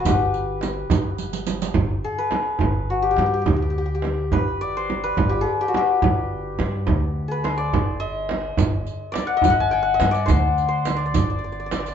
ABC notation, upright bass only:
X:1
M:6/8
L:1/8
Q:3/8=70
K:none
V:1 name="Upright bass" clef=bass
G,,,3 G,,,3 | G,,, z2 G,,,2 G,, | D,,3 G,,,3 | G,,, z2 G,,,2 G,, |
D,,3 G,,,3 | G,,, z2 G,,,2 G,, | D,,3 G,,,3 |]